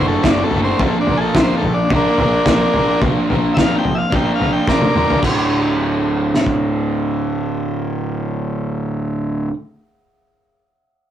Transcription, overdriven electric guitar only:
Already playing: A2 D4
0.00 D3 A3 F#4
0.25 D2 A2 D3 A3 F#4
0.38 A3 F#4
0.42 D3
0.51 A2 D3 A3
0.56 F#4
0.65 A3 F#4
0.70 D3
0.78 A#2 F3 A#3 D4 F4 A#4
1.07 A#3 D4 F4
1.12 A#4
1.35 A#2 F3 A#3 D4 F4
1.39 A#4
1.48 D4 F4 A#4
1.52 A#3
1.64 muted overdriven electric guitar stroke
1.91 A#3 D4 F4 A#4
2.05 D4 F4 A#4
2.09 A#3
2.18 A#3 D4 F4
2.22 A#4
2.45 A#2 F3 A#3 D4 F4
2.49 A#4
2.60 D4 F4 A#4
2.64 A#3
2.73 A#3 D4 F4 A#4
2.88 D4 F4 A#4
2.93 A#3
3.01 A#2 F3 A#3 D4 F4
3.06 A#4
3.29 A#3 D4 F4 A#4
3.57 A#2 F3 A#3 D4 F4
3.61 A#4
3.70 D4 F4 A#4
3.74 A#3
3.85 muted overdriven electric guitar stroke
4.10 A#3 D4 F4
4.15 A#4
4.25 D4 F4 A#4
4.29 A#3
4.40 A#3 D4 F4 A#4
4.68 A#2 F3 A#3 D4 F4 A#4
4.80 D4 F4 A#4
4.84 A#3
4.93 A#3 D4 F4
4.97 A#4
5.06 D4 F4 A#4
5.11 A#3
5.20 D2 A2 D3 A3
5.25 F#4

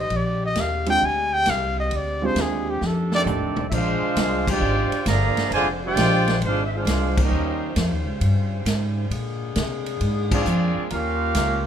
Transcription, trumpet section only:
3.14 C4 G4 A4 D5
3.69 E5
3.74 D4 G#4 C5 F5
4.50 F4 C5 D5 G5
5.09 G#4 D5 F5 A#5
5.54 F4 C5 D5 G#5
5.86 F4 C5 D5 G5
6.46 D4 G#4 C5 F5
6.65 E5
6.77 D4 G#4 C5 F5
7.24 C#4 G4 A#4 D#5
10.32 C4 F4 G#4 D5
10.92 C#4 G4 A#4 F5

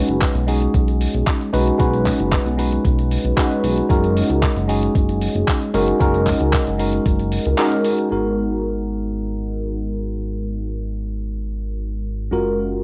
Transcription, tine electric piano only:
Already playing: G#3 C#4 D#4 F#4 B4
0.46 G#3 C#4 D#4 F#4 G#4
1.53 G#3 C#4 D#4 F#4 B4
1.78 G#3 C#4 D#4 F#4 B4
2.57 G#3 C#4 D#4 F#4 B4
3.37 G#3 C#4 D#4 F#4 B4
3.89 G#3 C#4 D#4 F#4 A#4
4.68 G#3 C#4 D#4 F#4 G#4
5.74 G#3 C#4 D#4 F#4 A#4
5.99 G#3 C#4 D#4 F#4 A#4
6.78 G#3 C#4 D#4 F#4 A#4
7.58 G#3 C#4 D#4 F#4 A#4
8.10 G#3 B3 D#4 F#4 A#4
12.31 G#3 C#4 F4 F#4 A#4

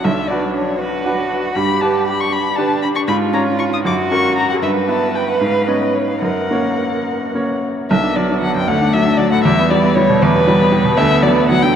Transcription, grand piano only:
0.05 B1
0.30 D4 F#4 B4
1.06 D4 F#4 B4
1.56 G2
1.81 D4 G4 B4
2.57 D4 G4 B4
3.08 G#2
3.33 C#4 F4 C#5
3.85 F#2
4.11 C#4 F#4 A#4
4.62 G2
4.88 B3 E4 B4
5.41 G#2
5.67 B3 C#4 C#5
6.22 F#2
6.51 A#3 C#4 C#5
7.35 A#3 C#4 C#5
7.91 B1
8.03 D4
8.17 F#3
8.30 D4
8.42 F#3
8.55 F#2
8.68 D2
8.81 D4
8.94 F#3
9.06 D4
9.19 F#3
9.31 A2
9.45 E2
9.58 B3
9.71 G3
9.84 B3
9.97 G3
10.09 B2
10.22 E2
10.35 B3
10.47 G3
10.60 B3
10.72 G3
10.85 B2
10.97 D2
11.10 B3
11.23 F#3
11.36 B3
11.49 F#3
11.63 D3

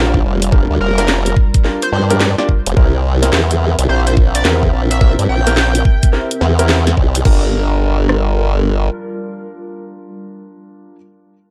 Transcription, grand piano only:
Already playing: D4 F4 G4 A#4
0.52 D4 F4 G4 A#4
0.98 D4 F4 G4 A#4
1.65 D4 F4 G4 A#4
2.11 D4 F4 G4 A#4
2.38 D4 F4 G4 D5
2.77 C4 E4 G4 A#4
3.22 C4 E4 G4 A#4
3.89 C4 E4 G4 C5
4.45 C4 E4 G4 A#4
5.01 C4 E4 G4 A#4
5.47 C4 E4 G4 A#4
6.13 C4 E4 G4 A#4
6.59 C4 E4 G4 A#4
7.25 D4 F4 G4 A#4

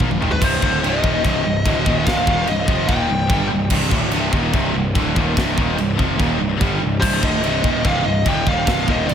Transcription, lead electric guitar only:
0.32 B4
0.44 C5
0.84 D#5
2.06 F5
2.49 D#5
2.88 G5
7.00 C5
7.24 D#5
7.86 F5
8.06 D#5
8.28 G5
8.48 F5
8.91 D#5
9.08 D5

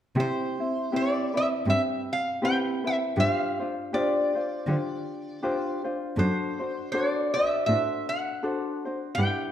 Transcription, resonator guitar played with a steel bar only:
0.20 C5
0.96 D5
1.37 E5
1.70 E5
2.13 F5
2.45 G5
2.87 E5
3.20 E5
3.31 F5
3.94 D5
6.19 C5
6.92 C#5
7.09 D5
7.34 E5
7.66 E5
8.09 F#5
9.15 G5

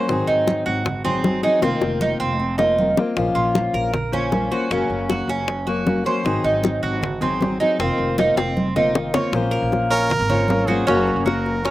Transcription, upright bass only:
0.08 G#1
0.28 G#1
0.67 G#1
1.62 F1
1.81 F1
2.20 F1
3.17 A#1
3.35 A#1
3.73 A#1
4.71 F#1
4.89 F#1
5.27 F#1
6.25 G#1
6.44 G#1
6.83 G#1
7.79 F1
7.98 F1
8.36 F1
9.32 A#1
9.62 A#1
10.19 G#1
10.87 F#1
11.16 F#1

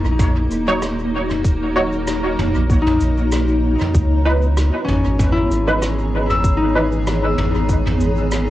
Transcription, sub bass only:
0.04 A#1
0.50 D#1
2.38 D#1
2.55 A#1
3.00 A#1
3.94 C#2
4.88 G#1
5.05 G#1
5.50 G#1
7.38 G#1
7.55 G#1
8.00 G#1

